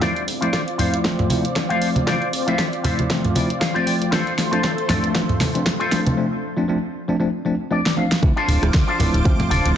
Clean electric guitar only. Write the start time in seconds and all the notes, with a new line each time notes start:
0.01 F4 C5 D5
0.41 F4 C5 D5
0.78 F4 C5 F5
1.04 muted clean electric guitar stroke
1.55 muted clean electric guitar stroke
1.69 F4 C5 F5
2.06 F4 C5 D5
2.47 F4 C5 E5
2.84 F4 C5 E5
3.09 muted clean electric guitar stroke
3.35 D5
3.60 F5, muted clean electric guitar stroke
3.74 F4 C5 D5
3.87 G5
4.11 F4 A4 C5
4.51 F4 A4 C5
4.88 F4 A4 D5
5.14 muted clean electric guitar stroke
5.65 muted clean electric guitar stroke
5.79 F4 A4 C5
7.71 D5
7.97 F5
8.36 D4 F4 A4 C5
8.87 D4 F4 A4 C5
9.50 D4 F4 A4 D5